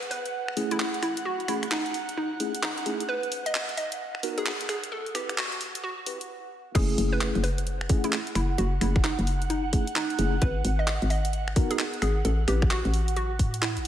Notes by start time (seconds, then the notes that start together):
Already playing: F#5
0.03 closed hi-hat
0.11 B4, open hi-hat
0.26 closed hi-hat
0.48 finger snap
0.57 A3 C#4 E4 G#4, open hi-hat
0.71 A3 C#4 E4 G#4, closed hi-hat
0.80 clap
0.94 closed hi-hat
1.03 E4, finger snap, open hi-hat
1.17 closed hi-hat
1.25 F#4
1.40 closed hi-hat
1.48 A3 C#4 E4 G#4, finger snap, open hi-hat
1.63 finger snap, closed hi-hat
1.71 D#4, clap
1.86 closed hi-hat
1.94 open hi-hat
2.09 closed hi-hat
2.17 D#4
2.40 A3 C#4 E4 G#4, open hi-hat
2.55 closed hi-hat
2.63 D#4, clap
2.78 closed hi-hat
2.86 A3 C#4 E4 G#4, open hi-hat
3.00 closed hi-hat
3.09 B4
3.23 closed hi-hat
3.32 open hi-hat
3.46 D#5, closed hi-hat
3.55 clap
3.69 closed hi-hat
3.77 D#5, open hi-hat
3.92 closed hi-hat
4.15 finger snap
4.23 B3 D#4 F#4 A#4, open hi-hat
4.38 B3 D#4 F#4 G#4 A#4, closed hi-hat
4.46 clap
4.61 closed hi-hat
4.69 G#4, finger snap, open hi-hat
4.84 closed hi-hat
4.92 A4
5.06 closed hi-hat
5.15 C4 E4 G4 B4, finger snap, open hi-hat
5.29 finger snap, closed hi-hat
5.38 F#4, clap
5.52 closed hi-hat
5.61 open hi-hat
5.75 closed hi-hat
5.84 F#4
6.06 C4 E4 G4 B4, open hi-hat
6.21 closed hi-hat
6.75 F#1 A3 C#4 E4 G#4 F#5, kick, closed hi-hat, crash
6.98 F#1, open hi-hat
7.12 B4
7.21 clap, closed hi-hat
7.35 F#1, closed hi-hat
7.43 B4, open hi-hat
7.58 closed hi-hat
7.67 closed hi-hat
7.81 finger snap
7.89 A3 C#4 E4 G#4, kick, open hi-hat
8.04 A3 C#4 E4 G#4, closed hi-hat
8.12 clap
8.27 closed hi-hat
8.35 F#1 E4, finger snap, open hi-hat
8.58 F#1 F#4, closed hi-hat
8.81 F#1 A3 C#4 E4 G#4, finger snap, open hi-hat
8.96 finger snap, kick
9.04 D#4, clap, closed hi-hat
9.19 F#1, closed hi-hat
9.27 open hi-hat
9.42 closed hi-hat
9.50 D#4, closed hi-hat
9.73 A3 C#4 E4 G#4, kick, open hi-hat
9.87 closed hi-hat
9.96 D#4, clap
10.10 closed hi-hat
10.19 F#1 A3 C#4 E4 G#4, open hi-hat
10.42 G#1 B4, kick, closed hi-hat
10.65 G#1, open hi-hat
10.79 D#5
10.87 clap, closed hi-hat
11.02 G#1, closed hi-hat
11.10 D#5, open hi-hat
11.25 closed hi-hat
11.33 closed hi-hat
11.48 finger snap
11.56 B3 D#4 F#4 A#4, kick, open hi-hat
11.71 B3 D#4 F#4 G#4 A#4, closed hi-hat
11.79 clap
11.94 closed hi-hat
12.02 G#1 G#4, finger snap, open hi-hat
12.25 A1 A4, closed hi-hat
12.48 A1 C4 E4 G4 B4, finger snap, open hi-hat
12.62 finger snap, kick
12.71 F#4, clap, closed hi-hat
12.85 A1, closed hi-hat
12.94 open hi-hat
13.08 closed hi-hat
13.16 F#4, closed hi-hat
13.39 A2, kick, open hi-hat
13.54 closed hi-hat
13.62 E4, clap
13.77 A1, closed hi-hat